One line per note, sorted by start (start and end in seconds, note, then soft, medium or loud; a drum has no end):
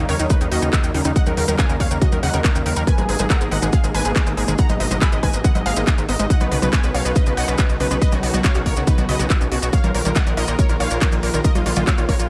0.00 2.84 C#3 medium
0.00 2.84 F#3 medium
0.00 6.26 A#3 medium
0.00 2.84 D#4 medium
0.09 0.16 D#2 loud
0.09 0.14 C#3 medium
0.09 0.18 A#4 medium
0.09 0.18 C#5 medium
0.09 open hi-hat loud
0.19 0.26 D#2 medium
0.19 0.29 D#4 medium
0.19 closed hi-hat medium
0.19 maracas medium
0.30 0.35 C#3 medium
0.30 0.40 D#4 medium
0.30 0.40 B4 medium
0.30 kick loud
0.30 closed hi-hat medium
0.30 maracas medium
0.41 0.48 D#2 medium
0.41 0.46 C#3 medium
0.41 0.50 D#4 medium
0.41 closed hi-hat medium
0.41 maracas soft
0.52 0.58 D#2 loud
0.52 0.61 F#4 medium
0.52 0.61 D#5 loud
0.52 open hi-hat loud
0.62 0.69 D#2 medium
0.62 0.68 C#3 medium
0.62 0.72 D#4 medium
0.62 closed hi-hat medium
0.62 maracas medium
0.73 0.78 C#3 medium
0.73 0.83 D#4 medium
0.73 kick loud
0.73 clap loud
0.73 closed hi-hat medium
0.73 maracas medium
0.84 0.91 D#2 medium
0.84 closed hi-hat medium
0.84 maracas soft
0.94 1.01 D#2 loud
0.94 1.00 C#3 medium
0.94 1.04 D#4 medium
0.94 open hi-hat medium
1.05 1.12 D#2 medium
1.05 1.11 C#3 medium
1.05 1.15 D#4 medium
1.05 closed hi-hat medium
1.05 maracas medium
1.16 1.25 D#5 medium
1.16 1.25 F#5 loud
1.16 kick loud
1.16 closed hi-hat medium
1.16 maracas medium
1.26 1.33 D#2 medium
1.26 1.32 C#3 medium
1.26 1.36 A#4 medium
1.26 closed hi-hat medium
1.26 high conga medium
1.26 maracas soft
1.37 1.44 D#2 loud
1.37 1.43 C#3 medium
1.37 1.47 A#4 medium
1.37 open hi-hat loud
1.48 1.55 D#2 loud
1.48 1.57 A#4 medium
1.48 1.58 A#4 medium
1.48 closed hi-hat medium
1.48 high conga medium
1.48 maracas medium
1.59 1.64 C#3 medium
1.59 1.68 F5 medium
1.59 1.68 G#5 medium
1.59 kick loud
1.59 clap loud
1.59 closed hi-hat medium
1.59 maracas medium
1.69 1.76 D#2 medium
1.69 1.75 C#3 medium
1.69 1.79 A#4 medium
1.69 closed hi-hat medium
1.69 maracas soft
1.80 1.87 D#2 loud
1.80 1.90 C#5 medium
1.80 1.90 F5 medium
1.80 kick medium
1.80 open hi-hat loud
1.91 1.98 D#2 medium
1.91 1.96 C#3 medium
1.91 2.00 A#4 medium
1.91 closed hi-hat medium
1.91 maracas medium
2.02 2.07 C#3 medium
2.02 2.11 F#4 medium
2.02 2.11 D#5 medium
2.02 kick loud
2.02 closed hi-hat medium
2.02 maracas medium
2.12 2.19 D#2 medium
2.12 2.22 A#4 medium
2.12 closed hi-hat medium
2.12 high conga medium
2.12 maracas soft
2.23 2.30 D#2 loud
2.23 2.28 C#3 medium
2.23 2.32 D#5 medium
2.23 2.32 F#5 loud
2.23 open hi-hat loud
2.33 2.41 D#2 medium
2.33 2.39 C#3 medium
2.33 2.43 A#4 medium
2.33 closed hi-hat medium
2.33 maracas medium
2.44 2.54 A#4 medium
2.44 kick loud
2.44 clap loud
2.44 closed hi-hat medium
2.44 maracas medium
2.55 2.62 D#2 medium
2.55 2.61 C#3 medium
2.55 closed hi-hat medium
2.55 maracas soft
2.66 2.73 D#2 loud
2.66 2.71 C#3 medium
2.66 2.75 A#4 medium
2.66 open hi-hat loud
2.76 2.83 D#2 medium
2.76 2.86 A#4 medium
2.76 closed hi-hat medium
2.76 maracas medium
2.87 6.27 B2 medium
2.87 2.93 D#3 medium
2.87 6.27 G#3 medium
2.87 9.69 D#4 medium
2.87 2.97 B4 medium
2.87 2.97 G#5 loud
2.87 kick loud
2.87 closed hi-hat medium
2.87 maracas medium
2.98 3.05 G#1 medium
2.98 3.03 D#3 medium
2.98 3.07 G#4 medium
2.98 closed hi-hat medium
2.98 high conga medium
2.98 maracas soft
3.09 3.16 G#1 loud
3.09 3.18 G#4 medium
3.09 open hi-hat loud
3.19 3.26 G#1 loud
3.19 3.25 D#3 medium
3.19 3.29 G#4 medium
3.19 closed hi-hat medium
3.19 high conga medium
3.19 maracas medium
3.30 3.35 D#3 medium
3.30 3.40 F#5 medium
3.30 3.40 A#5 medium
3.30 kick loud
3.30 clap loud
3.30 closed hi-hat medium
3.30 maracas medium
3.41 3.48 G#1 medium
3.41 3.50 G#4 medium
3.41 closed hi-hat medium
3.41 maracas soft
3.51 3.58 G#1 loud
3.51 3.57 D#3 medium
3.51 3.61 D#5 medium
3.51 3.61 F#5 medium
3.51 open hi-hat loud
3.62 3.69 G#1 medium
3.62 3.68 D#3 medium
3.62 3.72 G#4 medium
3.62 closed hi-hat medium
3.62 maracas medium
3.73 3.82 G#4 medium
3.73 3.82 F5 medium
3.73 kick loud
3.73 closed hi-hat medium
3.73 maracas medium
3.84 3.91 G#1 medium
3.84 3.89 D#3 medium
3.84 3.93 G#4 medium
3.84 closed hi-hat medium
3.84 maracas soft
3.94 4.01 G#1 loud
3.94 4.00 D#3 medium
3.94 4.04 B4 medium
3.94 4.04 G#5 loud
3.94 open hi-hat loud
4.05 4.12 G#1 medium
4.05 4.15 G#4 medium
4.05 closed hi-hat medium
4.05 maracas medium
4.16 4.21 D#3 medium
4.16 4.25 G#4 medium
4.16 kick loud
4.16 clap loud
4.16 closed hi-hat medium
4.16 maracas medium
4.27 4.33 G#1 medium
4.27 4.32 D#3 medium
4.27 closed hi-hat medium
4.27 maracas soft
4.37 4.44 G#1 loud
4.37 4.47 G#4 medium
4.37 open hi-hat loud
4.48 4.55 G#1 medium
4.48 4.53 D#3 medium
4.48 4.57 G#4 medium
4.48 4.58 G#4 medium
4.48 closed hi-hat medium
4.48 maracas medium
4.58 4.64 D#3 medium
4.58 4.68 F#5 medium
4.58 4.68 A#5 loud
4.58 kick loud
4.58 closed hi-hat medium
4.58 maracas medium
4.69 4.76 G#1 medium
4.69 4.79 D#5 medium
4.69 closed hi-hat medium
4.69 high conga medium
4.69 maracas soft
4.80 4.87 G#1 loud
4.80 4.86 D#3 medium
4.80 4.90 D#5 medium
4.80 open hi-hat loud
4.91 4.98 G#1 loud
4.91 4.96 D#3 medium
4.91 5.00 D#5 medium
4.91 closed hi-hat medium
4.91 high conga medium
4.91 maracas medium
5.01 5.11 G#5 medium
5.01 5.11 B5 medium
5.01 kick loud
5.01 clap loud
5.01 closed hi-hat medium
5.01 maracas medium
5.12 5.19 G#1 medium
5.12 5.18 D#3 medium
5.12 5.22 D#5 medium
5.12 closed hi-hat medium
5.12 maracas soft
5.23 5.30 G#1 loud
5.23 5.28 D#3 medium
5.23 5.32 B4 medium
5.23 5.32 G#5 medium
5.23 kick medium
5.23 open hi-hat loud
5.33 5.41 G#1 medium
5.33 5.43 D#5 medium
5.33 closed hi-hat medium
5.33 maracas medium
5.44 5.50 D#3 medium
5.44 5.54 D#5 medium
5.44 5.54 F#5 medium
5.44 kick loud
5.44 closed hi-hat medium
5.44 maracas medium
5.55 5.62 G#1 medium
5.55 5.60 D#3 medium
5.55 5.65 D#5 medium
5.55 closed hi-hat medium
5.55 high conga medium
5.55 maracas soft
5.66 5.73 G#1 loud
5.66 5.75 G#4 medium
5.66 5.75 F5 loud
5.66 5.75 F5 medium
5.66 open hi-hat loud
5.76 5.84 G#1 medium
5.76 5.82 D#3 medium
5.76 5.86 D#5 medium
5.76 closed hi-hat medium
5.76 maracas medium
5.87 5.90 A#3 medium
5.87 5.97 D#5 medium
5.87 kick loud
5.87 clap loud
5.87 closed hi-hat medium
5.87 maracas medium
5.98 6.05 G#1 medium
5.98 6.03 D#3 loud
5.98 closed hi-hat medium
5.98 maracas soft
6.09 6.16 G#1 loud
6.09 6.14 B3 medium
6.09 6.18 D#5 medium
6.09 open hi-hat loud
6.19 6.26 G#1 medium
6.19 6.25 G#3 medium
6.19 6.29 D#5 medium
6.19 closed hi-hat medium
6.19 maracas medium
6.30 6.35 C#3 medium
6.30 9.70 C#3 medium
6.30 9.70 F#3 medium
6.30 9.70 B3 medium
6.30 6.40 D#5 medium
6.30 6.40 F#5 loud
6.30 kick loud
6.30 closed hi-hat medium
6.30 maracas medium
6.40 6.48 B1 medium
6.40 6.50 B4 medium
6.40 closed hi-hat medium
6.40 high conga medium
6.40 maracas soft
6.51 6.58 B1 loud
6.51 6.57 C#3 medium
6.51 6.61 B4 medium
6.51 open hi-hat loud
6.62 6.69 B1 loud
6.62 6.68 C#3 medium
6.62 6.72 B4 medium
6.62 closed hi-hat medium
6.62 high conga medium
6.62 maracas medium
6.73 6.82 B4 medium
6.73 6.82 G#5 medium
6.73 kick loud
6.73 clap loud
6.73 closed hi-hat medium
6.73 maracas medium
6.83 6.91 B1 medium
6.83 6.89 C#3 medium
6.83 6.93 B4 medium
6.83 closed hi-hat medium
6.83 maracas soft
6.94 7.01 B1 loud
6.94 7.00 C#3 medium
6.94 7.04 C#5 medium
6.94 7.04 F5 medium
6.94 open hi-hat medium
7.05 7.12 B1 medium
7.05 7.15 B4 medium
7.05 closed hi-hat medium
7.05 maracas medium
7.16 7.21 C#3 medium
7.16 7.25 B4 medium
7.16 7.25 D#5 medium
7.16 kick loud
7.16 closed hi-hat medium
7.16 maracas medium
7.26 7.33 B1 medium
7.26 7.32 C#3 medium
7.26 7.36 B4 medium
7.26 closed hi-hat medium
7.26 maracas soft
7.37 7.44 B1 loud
7.37 7.47 D#5 medium
7.37 7.47 F#5 loud
7.37 open hi-hat loud
7.48 7.55 B1 medium
7.48 7.53 C#3 medium
7.48 7.57 B4 medium
7.48 7.58 B4 medium
7.48 maracas medium
7.58 7.64 C#3 medium
7.58 7.68 B4 medium
7.58 kick loud
7.58 clap loud
7.58 closed hi-hat medium
7.58 maracas medium
7.69 7.76 B1 medium
7.69 closed hi-hat medium
7.69 maracas soft
7.80 7.87 B1 loud
7.80 7.85 C#3 medium
7.80 7.90 B4 medium
7.80 open hi-hat loud
7.91 7.98 B1 medium
7.91 7.96 C#3 medium
7.91 8.00 B4 medium
7.91 closed hi-hat medium
7.91 maracas medium
8.02 8.11 B4 medium
8.02 8.11 D#5 loud
8.02 kick loud
8.02 closed hi-hat medium
8.02 maracas medium
8.12 8.19 B1 medium
8.12 8.18 C#3 medium
8.12 8.22 F#4 medium
8.12 closed hi-hat medium
8.12 high conga medium
8.12 maracas soft
8.23 8.30 B1 loud
8.23 8.28 C#3 medium
8.23 8.32 F#4 medium
8.23 open hi-hat loud
8.34 8.41 B1 loud
8.34 8.43 F#4 medium
8.34 closed hi-hat medium
8.34 high conga medium
8.34 maracas medium
8.44 8.50 C#3 medium
8.44 8.54 C#5 medium
8.44 8.54 F5 medium
8.44 kick loud
8.44 clap loud
8.44 closed hi-hat medium
8.44 maracas medium
8.54 8.62 B1 medium
8.54 8.60 C#3 medium
8.54 8.65 F#4 medium
8.54 closed hi-hat medium
8.54 maracas soft
8.66 8.73 B1 loud
8.66 8.75 A#4 medium
8.66 8.75 C#5 medium
8.66 kick medium
8.66 open hi-hat medium
8.76 8.83 B1 medium
8.76 8.82 C#3 medium
8.76 8.86 F#4 medium
8.76 closed hi-hat medium
8.76 maracas medium
8.87 8.93 C#3 medium
8.87 8.97 D#4 medium
8.87 8.97 B4 medium
8.87 kick loud
8.87 closed hi-hat medium
8.87 maracas medium
8.98 9.05 B1 medium
8.98 9.08 F#4 medium
8.98 closed hi-hat medium
8.98 high conga medium
8.98 maracas soft
9.09 9.16 B1 loud
9.09 9.14 C#3 medium
9.09 9.18 B4 medium
9.09 9.18 D#5 loud
9.09 open hi-hat loud
9.19 9.26 B1 medium
9.19 9.25 C#3 medium
9.19 9.29 F#4 medium
9.19 closed hi-hat medium
9.19 maracas medium
9.30 9.40 F#4 medium
9.30 kick loud
9.30 clap loud
9.30 closed hi-hat medium
9.30 maracas medium
9.41 9.48 B1 medium
9.41 9.46 C#3 medium
9.41 closed hi-hat medium
9.41 maracas soft
9.52 9.59 B1 loud
9.52 9.57 C#3 medium
9.52 9.61 F#4 medium
9.52 open hi-hat medium
9.62 9.69 B1 medium
9.62 9.72 F#4 medium
9.62 closed hi-hat medium
9.62 maracas medium
9.73 12.29 D#3 medium
9.73 9.78 D#3 medium
9.73 12.29 F3 medium
9.73 12.29 A#3 medium
9.73 12.29 F4 loud
9.73 9.83 C#5 medium
9.73 9.83 F5 loud
9.73 kick loud
9.73 closed hi-hat medium
9.73 maracas medium
9.84 9.91 A#1 medium
9.84 9.89 D#3 medium
9.84 9.93 A#4 medium
9.84 closed hi-hat medium
9.84 high conga medium
9.84 maracas soft
9.94 10.01 A#1 loud
9.94 10.04 A#4 medium
9.94 open hi-hat loud
10.05 10.12 A#1 loud
10.05 10.10 D#3 medium
10.05 10.15 A#4 medium
10.05 closed hi-hat medium
10.05 high conga medium
10.05 maracas medium
10.15 10.21 D#3 medium
10.15 10.25 D#5 medium
10.15 10.25 F#5 medium
10.15 kick loud
10.15 clap loud
10.15 closed hi-hat medium
10.15 maracas medium
10.27 10.34 A#1 medium
10.27 10.36 A#4 medium
10.27 closed hi-hat medium
10.27 maracas soft
10.37 10.44 A#1 loud
10.37 10.43 D#3 medium
10.37 10.47 A#4 medium
10.37 10.47 D#5 medium
10.37 open hi-hat medium
10.48 10.55 A#1 medium
10.48 10.53 D#3 medium
10.48 10.57 A#4 medium
10.48 10.58 A#4 medium
10.48 closed hi-hat medium
10.48 maracas medium
10.59 10.68 A#4 medium
10.59 10.68 C#5 medium
10.59 kick loud
10.59 closed hi-hat medium
10.59 maracas medium
10.69 10.76 A#1 medium
10.69 10.75 D#3 medium
10.69 10.79 A#4 medium
10.69 closed hi-hat medium
10.69 maracas soft
10.80 10.87 A#1 loud
10.80 10.85 D#3 medium
10.80 10.90 C#5 medium
10.80 10.90 F5 loud
10.80 open hi-hat loud
10.90 10.98 A#1 medium
10.90 11.00 A#4 medium
10.90 closed hi-hat medium
10.90 maracas medium
11.01 11.07 D#3 medium
11.01 11.11 A#4 medium
11.01 kick loud
11.01 clap loud
11.01 closed hi-hat medium
11.01 maracas medium
11.12 11.19 A#1 medium
11.12 11.18 D#3 medium
11.12 closed hi-hat medium
11.12 maracas soft
11.23 11.30 A#1 loud
11.23 11.32 A#4 medium
11.23 11.33 A#4 medium
11.23 open hi-hat medium
11.34 11.41 A#1 medium
11.34 11.39 D#3 medium
11.34 11.43 A#4 medium
11.34 closed hi-hat medium
11.34 maracas medium
11.44 11.50 D#3 medium
11.44 11.54 A#4 medium
11.44 11.54 D#5 loud
11.44 kick loud
11.44 closed hi-hat medium
11.44 maracas medium
11.55 11.62 A#1 medium
11.55 11.65 F4 medium
11.55 closed hi-hat medium
11.55 high conga medium
11.55 maracas soft
11.66 11.73 A#1 loud
11.66 11.71 D#3 medium
11.66 11.75 F4 medium
11.66 open hi-hat loud
11.76 11.83 A#1 loud
11.76 11.82 D#3 medium
11.76 11.86 F4 medium
11.76 closed hi-hat medium
11.76 high conga medium
11.76 maracas medium
11.87 11.97 C#5 medium
11.87 11.97 F5 medium
11.87 kick loud
11.87 clap loud
11.87 closed hi-hat medium
11.87 maracas medium
11.98 12.05 A#1 medium
11.98 12.03 D#3 medium
11.98 12.07 F4 medium
11.98 closed hi-hat medium
11.98 maracas soft
12.09 12.16 A#1 loud
12.09 12.14 D#3 medium
12.09 12.18 A#4 medium
12.09 12.18 C#5 medium
12.09 kick medium
12.09 open hi-hat medium
12.19 12.26 A#1 medium
12.19 12.29 F4 medium
12.19 closed hi-hat medium
12.19 maracas medium